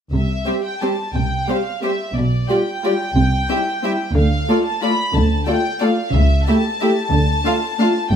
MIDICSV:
0, 0, Header, 1, 7, 480
1, 0, Start_track
1, 0, Key_signature, 0, "major"
1, 0, Tempo, 338600
1, 177, Time_signature, 3, 2, 24, 8
1, 4026, Tempo, 329308
1, 11776, End_track
2, 0, Start_track
2, 0, Title_t, "Violin section"
2, 0, Program_c, 0, 48
2, 185, Note_on_c, 0, 76, 51
2, 864, Note_off_c, 0, 76, 0
2, 918, Note_on_c, 0, 79, 52
2, 1161, Note_off_c, 0, 79, 0
2, 1163, Note_on_c, 0, 81, 50
2, 1627, Note_off_c, 0, 81, 0
2, 1631, Note_on_c, 0, 79, 51
2, 2096, Note_off_c, 0, 79, 0
2, 2108, Note_on_c, 0, 77, 53
2, 2590, Note_off_c, 0, 77, 0
2, 2599, Note_on_c, 0, 76, 48
2, 3044, Note_on_c, 0, 74, 49
2, 3047, Note_off_c, 0, 76, 0
2, 3524, Note_on_c, 0, 79, 63
2, 3534, Note_off_c, 0, 74, 0
2, 5943, Note_off_c, 0, 79, 0
2, 5950, Note_on_c, 0, 77, 63
2, 6654, Note_off_c, 0, 77, 0
2, 6661, Note_on_c, 0, 81, 60
2, 6901, Note_off_c, 0, 81, 0
2, 6916, Note_on_c, 0, 83, 67
2, 7380, Note_off_c, 0, 83, 0
2, 7381, Note_on_c, 0, 81, 61
2, 7854, Note_off_c, 0, 81, 0
2, 7862, Note_on_c, 0, 79, 65
2, 8343, Note_off_c, 0, 79, 0
2, 8347, Note_on_c, 0, 77, 58
2, 8810, Note_on_c, 0, 76, 67
2, 8817, Note_off_c, 0, 77, 0
2, 9302, Note_on_c, 0, 81, 76
2, 9312, Note_off_c, 0, 76, 0
2, 11657, Note_off_c, 0, 81, 0
2, 11715, Note_on_c, 0, 79, 73
2, 11776, Note_off_c, 0, 79, 0
2, 11776, End_track
3, 0, Start_track
3, 0, Title_t, "Violin section"
3, 0, Program_c, 1, 48
3, 648, Note_on_c, 1, 67, 32
3, 651, Note_on_c, 1, 72, 33
3, 761, Note_off_c, 1, 67, 0
3, 765, Note_off_c, 1, 72, 0
3, 1163, Note_on_c, 1, 72, 31
3, 1168, Note_on_c, 1, 67, 32
3, 1276, Note_off_c, 1, 72, 0
3, 1281, Note_off_c, 1, 67, 0
3, 2103, Note_on_c, 1, 67, 32
3, 2112, Note_on_c, 1, 72, 33
3, 2217, Note_off_c, 1, 67, 0
3, 2226, Note_off_c, 1, 72, 0
3, 2592, Note_on_c, 1, 72, 32
3, 2602, Note_on_c, 1, 67, 31
3, 2705, Note_off_c, 1, 72, 0
3, 2715, Note_off_c, 1, 67, 0
3, 3530, Note_on_c, 1, 74, 35
3, 3538, Note_on_c, 1, 67, 35
3, 3644, Note_off_c, 1, 74, 0
3, 3652, Note_off_c, 1, 67, 0
3, 4034, Note_on_c, 1, 67, 35
3, 4038, Note_on_c, 1, 74, 34
3, 4151, Note_off_c, 1, 67, 0
3, 4154, Note_off_c, 1, 74, 0
3, 4976, Note_on_c, 1, 67, 38
3, 4984, Note_on_c, 1, 76, 36
3, 5093, Note_off_c, 1, 67, 0
3, 5101, Note_off_c, 1, 76, 0
3, 5488, Note_on_c, 1, 67, 36
3, 5489, Note_on_c, 1, 76, 35
3, 5604, Note_off_c, 1, 67, 0
3, 5605, Note_off_c, 1, 76, 0
3, 6437, Note_on_c, 1, 69, 38
3, 6438, Note_on_c, 1, 74, 40
3, 6554, Note_off_c, 1, 69, 0
3, 6555, Note_off_c, 1, 74, 0
3, 6924, Note_on_c, 1, 74, 40
3, 6931, Note_on_c, 1, 69, 35
3, 7041, Note_off_c, 1, 74, 0
3, 7047, Note_off_c, 1, 69, 0
3, 7850, Note_on_c, 1, 69, 38
3, 7859, Note_on_c, 1, 74, 37
3, 7966, Note_off_c, 1, 69, 0
3, 7976, Note_off_c, 1, 74, 0
3, 8345, Note_on_c, 1, 74, 38
3, 8350, Note_on_c, 1, 69, 38
3, 8462, Note_off_c, 1, 74, 0
3, 8466, Note_off_c, 1, 69, 0
3, 9323, Note_on_c, 1, 67, 40
3, 9328, Note_on_c, 1, 76, 42
3, 9440, Note_off_c, 1, 67, 0
3, 9444, Note_off_c, 1, 76, 0
3, 9815, Note_on_c, 1, 76, 39
3, 9820, Note_on_c, 1, 67, 37
3, 9932, Note_off_c, 1, 76, 0
3, 9936, Note_off_c, 1, 67, 0
3, 10746, Note_on_c, 1, 65, 43
3, 10749, Note_on_c, 1, 77, 44
3, 10863, Note_off_c, 1, 65, 0
3, 10866, Note_off_c, 1, 77, 0
3, 11252, Note_on_c, 1, 77, 39
3, 11266, Note_on_c, 1, 65, 39
3, 11369, Note_off_c, 1, 77, 0
3, 11382, Note_off_c, 1, 65, 0
3, 11776, End_track
4, 0, Start_track
4, 0, Title_t, "French horn section"
4, 0, Program_c, 2, 60
4, 652, Note_on_c, 2, 55, 33
4, 657, Note_on_c, 2, 67, 35
4, 833, Note_off_c, 2, 55, 0
4, 837, Note_off_c, 2, 67, 0
4, 1151, Note_on_c, 2, 67, 34
4, 1154, Note_on_c, 2, 55, 35
4, 1322, Note_off_c, 2, 67, 0
4, 1324, Note_off_c, 2, 55, 0
4, 2094, Note_on_c, 2, 55, 37
4, 2101, Note_on_c, 2, 67, 34
4, 2270, Note_off_c, 2, 55, 0
4, 2276, Note_off_c, 2, 67, 0
4, 2568, Note_on_c, 2, 55, 37
4, 2573, Note_on_c, 2, 67, 33
4, 2740, Note_off_c, 2, 55, 0
4, 2744, Note_off_c, 2, 67, 0
4, 3528, Note_on_c, 2, 65, 36
4, 3532, Note_on_c, 2, 55, 37
4, 3707, Note_off_c, 2, 65, 0
4, 3711, Note_off_c, 2, 55, 0
4, 4015, Note_on_c, 2, 55, 38
4, 4015, Note_on_c, 2, 65, 38
4, 4187, Note_off_c, 2, 55, 0
4, 4187, Note_off_c, 2, 65, 0
4, 4983, Note_on_c, 2, 64, 39
4, 4988, Note_on_c, 2, 55, 40
4, 5163, Note_off_c, 2, 64, 0
4, 5167, Note_off_c, 2, 55, 0
4, 5483, Note_on_c, 2, 64, 39
4, 5486, Note_on_c, 2, 55, 41
4, 5653, Note_off_c, 2, 64, 0
4, 5655, Note_off_c, 2, 55, 0
4, 6420, Note_on_c, 2, 65, 39
4, 6427, Note_on_c, 2, 57, 40
4, 6596, Note_off_c, 2, 65, 0
4, 6602, Note_off_c, 2, 57, 0
4, 6919, Note_on_c, 2, 57, 41
4, 6924, Note_on_c, 2, 65, 43
4, 7086, Note_off_c, 2, 57, 0
4, 7090, Note_off_c, 2, 65, 0
4, 7858, Note_on_c, 2, 65, 44
4, 7864, Note_on_c, 2, 57, 41
4, 8036, Note_off_c, 2, 65, 0
4, 8041, Note_off_c, 2, 57, 0
4, 8366, Note_on_c, 2, 57, 41
4, 8366, Note_on_c, 2, 65, 40
4, 8532, Note_off_c, 2, 57, 0
4, 8532, Note_off_c, 2, 65, 0
4, 9350, Note_on_c, 2, 57, 43
4, 9357, Note_on_c, 2, 67, 44
4, 9522, Note_off_c, 2, 57, 0
4, 9527, Note_off_c, 2, 67, 0
4, 9818, Note_on_c, 2, 57, 40
4, 9823, Note_on_c, 2, 67, 45
4, 9985, Note_off_c, 2, 57, 0
4, 9989, Note_off_c, 2, 67, 0
4, 10749, Note_on_c, 2, 65, 45
4, 10751, Note_on_c, 2, 57, 46
4, 10927, Note_off_c, 2, 65, 0
4, 10928, Note_off_c, 2, 57, 0
4, 11249, Note_on_c, 2, 57, 47
4, 11254, Note_on_c, 2, 65, 44
4, 11419, Note_off_c, 2, 57, 0
4, 11422, Note_off_c, 2, 65, 0
4, 11776, End_track
5, 0, Start_track
5, 0, Title_t, "Viola section"
5, 0, Program_c, 3, 48
5, 655, Note_on_c, 3, 55, 34
5, 655, Note_on_c, 3, 60, 34
5, 769, Note_off_c, 3, 55, 0
5, 769, Note_off_c, 3, 60, 0
5, 1154, Note_on_c, 3, 55, 32
5, 1163, Note_on_c, 3, 60, 34
5, 1267, Note_off_c, 3, 55, 0
5, 1277, Note_off_c, 3, 60, 0
5, 2086, Note_on_c, 3, 55, 36
5, 2090, Note_on_c, 3, 60, 35
5, 2200, Note_off_c, 3, 55, 0
5, 2203, Note_off_c, 3, 60, 0
5, 2566, Note_on_c, 3, 60, 36
5, 2572, Note_on_c, 3, 55, 34
5, 2679, Note_off_c, 3, 60, 0
5, 2686, Note_off_c, 3, 55, 0
5, 3529, Note_on_c, 3, 65, 36
5, 3532, Note_on_c, 3, 55, 36
5, 3642, Note_off_c, 3, 65, 0
5, 3646, Note_off_c, 3, 55, 0
5, 4014, Note_on_c, 3, 55, 38
5, 4015, Note_on_c, 3, 65, 36
5, 4130, Note_off_c, 3, 55, 0
5, 4132, Note_off_c, 3, 65, 0
5, 4970, Note_on_c, 3, 60, 37
5, 4972, Note_on_c, 3, 64, 39
5, 5087, Note_off_c, 3, 60, 0
5, 5089, Note_off_c, 3, 64, 0
5, 5459, Note_on_c, 3, 60, 41
5, 5461, Note_on_c, 3, 64, 38
5, 5576, Note_off_c, 3, 60, 0
5, 5578, Note_off_c, 3, 64, 0
5, 6423, Note_on_c, 3, 65, 41
5, 6424, Note_on_c, 3, 57, 41
5, 6539, Note_off_c, 3, 65, 0
5, 6540, Note_off_c, 3, 57, 0
5, 6906, Note_on_c, 3, 65, 40
5, 6907, Note_on_c, 3, 57, 39
5, 7023, Note_off_c, 3, 65, 0
5, 7024, Note_off_c, 3, 57, 0
5, 7860, Note_on_c, 3, 57, 42
5, 7862, Note_on_c, 3, 65, 41
5, 7976, Note_off_c, 3, 57, 0
5, 7979, Note_off_c, 3, 65, 0
5, 8347, Note_on_c, 3, 65, 42
5, 8352, Note_on_c, 3, 57, 39
5, 8463, Note_off_c, 3, 65, 0
5, 8468, Note_off_c, 3, 57, 0
5, 9322, Note_on_c, 3, 57, 42
5, 9322, Note_on_c, 3, 64, 44
5, 9439, Note_off_c, 3, 57, 0
5, 9439, Note_off_c, 3, 64, 0
5, 9809, Note_on_c, 3, 64, 43
5, 9817, Note_on_c, 3, 57, 44
5, 9925, Note_off_c, 3, 64, 0
5, 9934, Note_off_c, 3, 57, 0
5, 10740, Note_on_c, 3, 62, 46
5, 10745, Note_on_c, 3, 57, 43
5, 10856, Note_off_c, 3, 62, 0
5, 10861, Note_off_c, 3, 57, 0
5, 11233, Note_on_c, 3, 62, 41
5, 11238, Note_on_c, 3, 57, 44
5, 11350, Note_off_c, 3, 62, 0
5, 11354, Note_off_c, 3, 57, 0
5, 11776, End_track
6, 0, Start_track
6, 0, Title_t, "Cello section"
6, 0, Program_c, 4, 48
6, 179, Note_on_c, 4, 48, 43
6, 557, Note_off_c, 4, 48, 0
6, 1628, Note_on_c, 4, 48, 46
6, 1994, Note_off_c, 4, 48, 0
6, 3045, Note_on_c, 4, 47, 48
6, 3429, Note_off_c, 4, 47, 0
6, 4489, Note_on_c, 4, 48, 51
6, 4872, Note_off_c, 4, 48, 0
6, 5946, Note_on_c, 4, 50, 54
6, 6319, Note_off_c, 4, 50, 0
6, 7376, Note_on_c, 4, 50, 56
6, 7748, Note_off_c, 4, 50, 0
6, 8806, Note_on_c, 4, 49, 58
6, 9203, Note_off_c, 4, 49, 0
6, 10269, Note_on_c, 4, 50, 57
6, 10638, Note_off_c, 4, 50, 0
6, 11699, Note_on_c, 4, 43, 62
6, 11776, Note_off_c, 4, 43, 0
6, 11776, End_track
7, 0, Start_track
7, 0, Title_t, "Double bass section"
7, 0, Program_c, 5, 48
7, 173, Note_on_c, 5, 36, 47
7, 554, Note_off_c, 5, 36, 0
7, 1623, Note_on_c, 5, 36, 51
7, 1991, Note_off_c, 5, 36, 0
7, 3039, Note_on_c, 5, 35, 49
7, 3426, Note_off_c, 5, 35, 0
7, 4482, Note_on_c, 5, 36, 53
7, 4868, Note_off_c, 5, 36, 0
7, 5934, Note_on_c, 5, 38, 58
7, 6313, Note_off_c, 5, 38, 0
7, 7367, Note_on_c, 5, 38, 60
7, 7743, Note_off_c, 5, 38, 0
7, 8817, Note_on_c, 5, 37, 60
7, 9208, Note_off_c, 5, 37, 0
7, 10257, Note_on_c, 5, 38, 57
7, 10632, Note_off_c, 5, 38, 0
7, 11704, Note_on_c, 5, 31, 61
7, 11776, Note_off_c, 5, 31, 0
7, 11776, End_track
0, 0, End_of_file